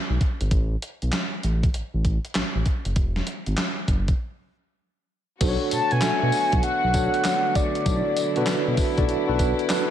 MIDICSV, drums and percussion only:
0, 0, Header, 1, 2, 480
1, 0, Start_track
1, 0, Tempo, 612245
1, 401, Time_signature, 4, 2, 24, 8
1, 7764, End_track
2, 0, Start_track
2, 0, Title_t, "Drums"
2, 163, Note_on_c, 9, 36, 87
2, 163, Note_on_c, 9, 42, 59
2, 241, Note_off_c, 9, 36, 0
2, 241, Note_off_c, 9, 42, 0
2, 318, Note_on_c, 9, 42, 54
2, 397, Note_off_c, 9, 42, 0
2, 401, Note_on_c, 9, 36, 112
2, 403, Note_on_c, 9, 42, 69
2, 480, Note_off_c, 9, 36, 0
2, 481, Note_off_c, 9, 42, 0
2, 646, Note_on_c, 9, 42, 82
2, 724, Note_off_c, 9, 42, 0
2, 799, Note_on_c, 9, 42, 46
2, 878, Note_off_c, 9, 42, 0
2, 880, Note_on_c, 9, 39, 88
2, 883, Note_on_c, 9, 38, 111
2, 884, Note_on_c, 9, 42, 76
2, 959, Note_off_c, 9, 39, 0
2, 961, Note_off_c, 9, 38, 0
2, 962, Note_off_c, 9, 42, 0
2, 1124, Note_on_c, 9, 42, 75
2, 1203, Note_off_c, 9, 42, 0
2, 1281, Note_on_c, 9, 36, 94
2, 1281, Note_on_c, 9, 42, 49
2, 1359, Note_off_c, 9, 36, 0
2, 1359, Note_off_c, 9, 42, 0
2, 1365, Note_on_c, 9, 42, 71
2, 1444, Note_off_c, 9, 42, 0
2, 1605, Note_on_c, 9, 36, 76
2, 1605, Note_on_c, 9, 42, 60
2, 1683, Note_off_c, 9, 36, 0
2, 1683, Note_off_c, 9, 42, 0
2, 1761, Note_on_c, 9, 42, 48
2, 1839, Note_off_c, 9, 42, 0
2, 1842, Note_on_c, 9, 39, 90
2, 1844, Note_on_c, 9, 42, 78
2, 1845, Note_on_c, 9, 38, 107
2, 1920, Note_off_c, 9, 39, 0
2, 1922, Note_off_c, 9, 42, 0
2, 1923, Note_off_c, 9, 38, 0
2, 2082, Note_on_c, 9, 42, 58
2, 2084, Note_on_c, 9, 36, 84
2, 2161, Note_off_c, 9, 42, 0
2, 2163, Note_off_c, 9, 36, 0
2, 2236, Note_on_c, 9, 42, 51
2, 2314, Note_off_c, 9, 42, 0
2, 2320, Note_on_c, 9, 42, 68
2, 2322, Note_on_c, 9, 36, 110
2, 2398, Note_off_c, 9, 42, 0
2, 2400, Note_off_c, 9, 36, 0
2, 2478, Note_on_c, 9, 38, 74
2, 2556, Note_off_c, 9, 38, 0
2, 2562, Note_on_c, 9, 42, 80
2, 2640, Note_off_c, 9, 42, 0
2, 2716, Note_on_c, 9, 42, 52
2, 2794, Note_off_c, 9, 42, 0
2, 2801, Note_on_c, 9, 39, 96
2, 2804, Note_on_c, 9, 38, 108
2, 2805, Note_on_c, 9, 42, 82
2, 2880, Note_off_c, 9, 39, 0
2, 2882, Note_off_c, 9, 38, 0
2, 2883, Note_off_c, 9, 42, 0
2, 3041, Note_on_c, 9, 36, 85
2, 3043, Note_on_c, 9, 42, 67
2, 3120, Note_off_c, 9, 36, 0
2, 3121, Note_off_c, 9, 42, 0
2, 3199, Note_on_c, 9, 42, 53
2, 3200, Note_on_c, 9, 36, 92
2, 3277, Note_off_c, 9, 42, 0
2, 3279, Note_off_c, 9, 36, 0
2, 4239, Note_on_c, 9, 42, 76
2, 4240, Note_on_c, 9, 49, 111
2, 4240, Note_on_c, 9, 54, 70
2, 4241, Note_on_c, 9, 36, 127
2, 4318, Note_off_c, 9, 42, 0
2, 4318, Note_off_c, 9, 49, 0
2, 4318, Note_off_c, 9, 54, 0
2, 4319, Note_off_c, 9, 36, 0
2, 4479, Note_on_c, 9, 42, 93
2, 4479, Note_on_c, 9, 54, 77
2, 4558, Note_off_c, 9, 42, 0
2, 4558, Note_off_c, 9, 54, 0
2, 4633, Note_on_c, 9, 42, 53
2, 4711, Note_off_c, 9, 42, 0
2, 4715, Note_on_c, 9, 39, 99
2, 4717, Note_on_c, 9, 54, 98
2, 4718, Note_on_c, 9, 38, 112
2, 4718, Note_on_c, 9, 42, 81
2, 4793, Note_off_c, 9, 39, 0
2, 4796, Note_off_c, 9, 38, 0
2, 4796, Note_off_c, 9, 54, 0
2, 4797, Note_off_c, 9, 42, 0
2, 4957, Note_on_c, 9, 46, 83
2, 4957, Note_on_c, 9, 54, 67
2, 5035, Note_off_c, 9, 54, 0
2, 5036, Note_off_c, 9, 46, 0
2, 5114, Note_on_c, 9, 42, 54
2, 5118, Note_on_c, 9, 36, 97
2, 5193, Note_off_c, 9, 42, 0
2, 5196, Note_off_c, 9, 36, 0
2, 5197, Note_on_c, 9, 42, 81
2, 5276, Note_off_c, 9, 42, 0
2, 5439, Note_on_c, 9, 54, 72
2, 5440, Note_on_c, 9, 42, 69
2, 5442, Note_on_c, 9, 36, 83
2, 5518, Note_off_c, 9, 42, 0
2, 5518, Note_off_c, 9, 54, 0
2, 5520, Note_off_c, 9, 36, 0
2, 5597, Note_on_c, 9, 42, 54
2, 5675, Note_off_c, 9, 42, 0
2, 5679, Note_on_c, 9, 39, 105
2, 5681, Note_on_c, 9, 42, 85
2, 5682, Note_on_c, 9, 38, 123
2, 5683, Note_on_c, 9, 54, 102
2, 5757, Note_off_c, 9, 39, 0
2, 5759, Note_off_c, 9, 42, 0
2, 5760, Note_off_c, 9, 38, 0
2, 5761, Note_off_c, 9, 54, 0
2, 5922, Note_on_c, 9, 42, 67
2, 5922, Note_on_c, 9, 54, 64
2, 5923, Note_on_c, 9, 36, 97
2, 6000, Note_off_c, 9, 42, 0
2, 6000, Note_off_c, 9, 54, 0
2, 6001, Note_off_c, 9, 36, 0
2, 6078, Note_on_c, 9, 42, 64
2, 6156, Note_off_c, 9, 42, 0
2, 6161, Note_on_c, 9, 36, 126
2, 6162, Note_on_c, 9, 42, 79
2, 6162, Note_on_c, 9, 54, 70
2, 6239, Note_off_c, 9, 36, 0
2, 6240, Note_off_c, 9, 42, 0
2, 6240, Note_off_c, 9, 54, 0
2, 6401, Note_on_c, 9, 54, 81
2, 6402, Note_on_c, 9, 42, 88
2, 6480, Note_off_c, 9, 42, 0
2, 6480, Note_off_c, 9, 54, 0
2, 6553, Note_on_c, 9, 42, 55
2, 6631, Note_off_c, 9, 42, 0
2, 6636, Note_on_c, 9, 39, 108
2, 6638, Note_on_c, 9, 54, 102
2, 6639, Note_on_c, 9, 38, 122
2, 6639, Note_on_c, 9, 42, 94
2, 6715, Note_off_c, 9, 39, 0
2, 6717, Note_off_c, 9, 38, 0
2, 6717, Note_off_c, 9, 54, 0
2, 6718, Note_off_c, 9, 42, 0
2, 6877, Note_on_c, 9, 54, 65
2, 6878, Note_on_c, 9, 46, 74
2, 6879, Note_on_c, 9, 36, 98
2, 6956, Note_off_c, 9, 46, 0
2, 6956, Note_off_c, 9, 54, 0
2, 6957, Note_off_c, 9, 36, 0
2, 7037, Note_on_c, 9, 42, 55
2, 7039, Note_on_c, 9, 36, 102
2, 7115, Note_off_c, 9, 42, 0
2, 7117, Note_off_c, 9, 36, 0
2, 7124, Note_on_c, 9, 42, 84
2, 7202, Note_off_c, 9, 42, 0
2, 7363, Note_on_c, 9, 36, 85
2, 7365, Note_on_c, 9, 54, 70
2, 7366, Note_on_c, 9, 42, 73
2, 7442, Note_off_c, 9, 36, 0
2, 7443, Note_off_c, 9, 54, 0
2, 7444, Note_off_c, 9, 42, 0
2, 7519, Note_on_c, 9, 42, 55
2, 7598, Note_off_c, 9, 42, 0
2, 7601, Note_on_c, 9, 39, 110
2, 7603, Note_on_c, 9, 42, 88
2, 7604, Note_on_c, 9, 38, 120
2, 7605, Note_on_c, 9, 54, 104
2, 7679, Note_off_c, 9, 39, 0
2, 7681, Note_off_c, 9, 42, 0
2, 7682, Note_off_c, 9, 38, 0
2, 7683, Note_off_c, 9, 54, 0
2, 7764, End_track
0, 0, End_of_file